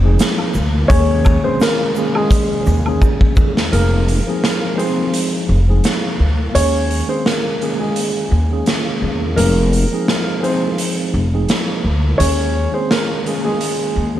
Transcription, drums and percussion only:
0.19 snare loud
0.19 closed hi-hat medium
0.19 shaker medium
0.38 high woodblock medium
0.54 shaker medium
0.90 kick loud
0.90 closed hi-hat medium
0.90 shaker medium
1.25 kick medium
1.25 high woodblock medium
1.25 shaker medium
1.60 snare loud
1.60 closed hi-hat medium
1.60 shaker medium
1.96 shaker medium
1.96 shaker soft
2.15 high woodblock medium
2.30 kick loud
2.30 closed hi-hat medium
2.30 shaker medium
2.66 shaker medium
2.68 shaker medium
2.86 high woodblock medium
3.02 kick medium
3.02 shaker medium
3.21 kick medium
3.36 kick loud
3.36 shaker medium
3.57 snare loud
3.73 closed hi-hat medium
4.08 closed hi-hat medium
4.44 snare loud
4.44 closed hi-hat medium
4.79 closed hi-hat soft
5.14 closed hi-hat medium
5.84 snare loud
5.84 closed hi-hat medium
6.55 closed hi-hat medium
6.91 closed hi-hat medium
7.26 snare loud
7.26 closed hi-hat medium
7.62 closed hi-hat soft
7.96 closed hi-hat medium
8.66 snare loud
8.66 closed hi-hat medium
9.38 closed hi-hat medium
9.73 closed hi-hat medium
10.08 snare loud
10.08 closed hi-hat medium
10.44 closed hi-hat soft
10.78 closed hi-hat medium
11.49 snare loud
11.49 closed hi-hat medium
12.20 closed hi-hat medium
12.91 snare loud
12.91 closed hi-hat medium
13.26 closed hi-hat soft
13.61 closed hi-hat medium

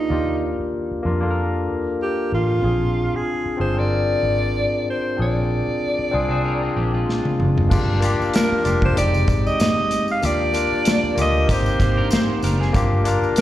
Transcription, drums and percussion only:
7.09 snare soft
7.25 high tom medium
7.40 mid tom medium
7.58 floor tom medium
7.71 kick loud
7.71 crash medium
7.71 tambourine medium
8.02 closed hi-hat medium
8.02 tambourine soft
8.22 tambourine soft
8.34 snare loud
8.34 closed hi-hat medium
8.34 tambourine medium
8.65 closed hi-hat medium
8.65 tambourine soft
8.82 kick medium
8.97 closed hi-hat loud
9.14 tambourine soft
9.28 kick medium
9.28 closed hi-hat medium
9.28 tambourine soft
9.47 tambourine soft
9.60 snare loud
9.60 closed hi-hat medium
9.60 tambourine medium
9.91 closed hi-hat medium
9.91 tambourine medium
10.08 tambourine soft
10.23 closed hi-hat medium
10.23 tambourine soft
10.54 closed hi-hat medium
10.54 tambourine soft
10.85 snare loud
10.85 closed hi-hat medium
10.85 tambourine medium
11.18 closed hi-hat medium
11.18 tambourine medium
11.49 kick loud
11.49 closed hi-hat loud
11.66 tambourine soft
11.80 kick medium
11.80 closed hi-hat medium
11.80 tambourine soft
12.11 snare loud
12.11 closed hi-hat medium
12.11 tambourine medium
12.43 closed hi-hat medium
12.43 tambourine medium
12.62 snare soft
12.74 kick loud
12.74 closed hi-hat medium
12.74 tambourine soft
13.05 closed hi-hat medium
13.05 tambourine soft
13.23 tambourine soft
13.36 closed hi-hat loud
13.36 tambourine medium

